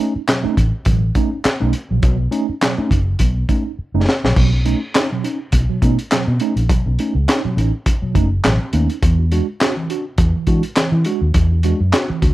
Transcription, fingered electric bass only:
0, 0, Header, 1, 3, 480
1, 0, Start_track
1, 0, Tempo, 583090
1, 1671, Time_signature, 4, 2, 24, 8
1, 10157, End_track
2, 0, Start_track
2, 0, Title_t, "Fingered electric bass"
2, 0, Program_c, 0, 33
2, 472, Note_on_c, 0, 33, 88
2, 580, Note_off_c, 0, 33, 0
2, 710, Note_on_c, 0, 33, 95
2, 904, Note_off_c, 0, 33, 0
2, 1333, Note_on_c, 0, 35, 82
2, 1415, Note_off_c, 0, 35, 0
2, 1570, Note_on_c, 0, 34, 72
2, 1654, Note_off_c, 0, 34, 0
2, 1672, Note_on_c, 0, 35, 95
2, 1866, Note_off_c, 0, 35, 0
2, 2394, Note_on_c, 0, 30, 80
2, 2587, Note_off_c, 0, 30, 0
2, 2634, Note_on_c, 0, 35, 93
2, 2828, Note_off_c, 0, 35, 0
2, 3246, Note_on_c, 0, 30, 94
2, 3332, Note_off_c, 0, 30, 0
2, 3491, Note_on_c, 0, 34, 69
2, 3575, Note_off_c, 0, 34, 0
2, 3593, Note_on_c, 0, 35, 90
2, 3896, Note_off_c, 0, 35, 0
2, 4550, Note_on_c, 0, 35, 100
2, 4659, Note_off_c, 0, 35, 0
2, 4794, Note_on_c, 0, 47, 97
2, 4902, Note_off_c, 0, 47, 0
2, 5165, Note_on_c, 0, 47, 90
2, 5251, Note_off_c, 0, 47, 0
2, 5401, Note_on_c, 0, 34, 78
2, 5489, Note_off_c, 0, 34, 0
2, 5647, Note_on_c, 0, 35, 92
2, 5732, Note_off_c, 0, 35, 0
2, 5885, Note_on_c, 0, 37, 89
2, 5970, Note_off_c, 0, 37, 0
2, 6231, Note_on_c, 0, 33, 99
2, 6340, Note_off_c, 0, 33, 0
2, 6710, Note_on_c, 0, 30, 87
2, 6905, Note_off_c, 0, 30, 0
2, 6951, Note_on_c, 0, 33, 102
2, 7060, Note_off_c, 0, 33, 0
2, 7191, Note_on_c, 0, 39, 99
2, 7299, Note_off_c, 0, 39, 0
2, 7432, Note_on_c, 0, 40, 95
2, 7734, Note_off_c, 0, 40, 0
2, 8382, Note_on_c, 0, 40, 110
2, 8494, Note_off_c, 0, 40, 0
2, 8619, Note_on_c, 0, 52, 98
2, 8732, Note_off_c, 0, 52, 0
2, 8989, Note_on_c, 0, 52, 105
2, 9080, Note_off_c, 0, 52, 0
2, 9231, Note_on_c, 0, 39, 78
2, 9322, Note_off_c, 0, 39, 0
2, 9343, Note_on_c, 0, 40, 100
2, 9648, Note_off_c, 0, 40, 0
2, 9717, Note_on_c, 0, 42, 82
2, 9805, Note_off_c, 0, 42, 0
2, 10066, Note_on_c, 0, 38, 90
2, 10157, Note_off_c, 0, 38, 0
2, 10157, End_track
3, 0, Start_track
3, 0, Title_t, "Muted fingered electric bass strokes"
3, 130, Note_on_c, 9, 29, 47
3, 212, Note_off_c, 9, 29, 0
3, 370, Note_on_c, 9, 29, 47
3, 452, Note_off_c, 9, 29, 0
3, 1195, Note_on_c, 9, 29, 46
3, 1278, Note_off_c, 9, 29, 0
3, 2052, Note_on_c, 9, 29, 43
3, 2135, Note_off_c, 9, 29, 0
3, 2288, Note_on_c, 9, 29, 45
3, 2370, Note_off_c, 9, 29, 0
3, 3117, Note_on_c, 9, 29, 42
3, 3199, Note_off_c, 9, 29, 0
3, 6131, Note_on_c, 9, 29, 48
3, 6213, Note_off_c, 9, 29, 0
3, 6606, Note_on_c, 9, 29, 50
3, 6688, Note_off_c, 9, 29, 0
3, 9960, Note_on_c, 9, 29, 49
3, 10042, Note_off_c, 9, 29, 0
3, 10157, End_track
0, 0, End_of_file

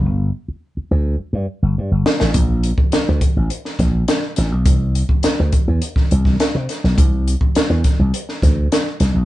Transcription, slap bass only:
0, 0, Header, 1, 3, 480
1, 0, Start_track
1, 0, Tempo, 578035
1, 33, Time_signature, 4, 2, 24, 8
1, 7681, End_track
2, 0, Start_track
2, 0, Title_t, "Slap bass"
2, 0, Program_c, 0, 36
2, 48, Note_on_c, 0, 31, 97
2, 241, Note_off_c, 0, 31, 0
2, 756, Note_on_c, 0, 38, 74
2, 953, Note_off_c, 0, 38, 0
2, 1104, Note_on_c, 0, 43, 94
2, 1206, Note_off_c, 0, 43, 0
2, 1349, Note_on_c, 0, 31, 90
2, 1449, Note_off_c, 0, 31, 0
2, 1480, Note_on_c, 0, 43, 99
2, 1575, Note_off_c, 0, 43, 0
2, 1589, Note_on_c, 0, 31, 89
2, 1689, Note_off_c, 0, 31, 0
2, 1836, Note_on_c, 0, 33, 84
2, 1933, Note_off_c, 0, 33, 0
2, 1950, Note_on_c, 0, 34, 113
2, 2249, Note_off_c, 0, 34, 0
2, 2562, Note_on_c, 0, 38, 103
2, 2656, Note_off_c, 0, 38, 0
2, 2795, Note_on_c, 0, 33, 75
2, 2892, Note_off_c, 0, 33, 0
2, 3150, Note_on_c, 0, 34, 92
2, 3349, Note_off_c, 0, 34, 0
2, 3637, Note_on_c, 0, 33, 89
2, 3752, Note_off_c, 0, 33, 0
2, 3752, Note_on_c, 0, 35, 87
2, 3868, Note_off_c, 0, 35, 0
2, 3868, Note_on_c, 0, 36, 99
2, 4168, Note_off_c, 0, 36, 0
2, 4481, Note_on_c, 0, 38, 93
2, 4576, Note_off_c, 0, 38, 0
2, 4714, Note_on_c, 0, 40, 83
2, 4812, Note_off_c, 0, 40, 0
2, 5080, Note_on_c, 0, 36, 100
2, 5276, Note_off_c, 0, 36, 0
2, 5438, Note_on_c, 0, 48, 86
2, 5535, Note_off_c, 0, 48, 0
2, 5680, Note_on_c, 0, 35, 93
2, 5777, Note_off_c, 0, 35, 0
2, 5794, Note_on_c, 0, 36, 100
2, 6094, Note_off_c, 0, 36, 0
2, 6392, Note_on_c, 0, 40, 95
2, 6493, Note_off_c, 0, 40, 0
2, 6638, Note_on_c, 0, 36, 89
2, 6736, Note_off_c, 0, 36, 0
2, 6998, Note_on_c, 0, 38, 85
2, 7197, Note_off_c, 0, 38, 0
2, 7475, Note_on_c, 0, 36, 83
2, 7576, Note_off_c, 0, 36, 0
2, 7595, Note_on_c, 0, 35, 89
2, 7681, Note_off_c, 0, 35, 0
2, 7681, End_track
3, 0, Start_track
3, 0, Title_t, "Muted slap bass strokes"
3, 402, Note_on_c, 9, 29, 46
3, 485, Note_off_c, 9, 29, 0
3, 639, Note_on_c, 9, 29, 51
3, 722, Note_off_c, 9, 29, 0
3, 2436, Note_on_c, 9, 29, 45
3, 2519, Note_off_c, 9, 29, 0
3, 4359, Note_on_c, 9, 29, 51
3, 4442, Note_off_c, 9, 29, 0
3, 6280, Note_on_c, 9, 29, 42
3, 6364, Note_off_c, 9, 29, 0
3, 7681, End_track
0, 0, End_of_file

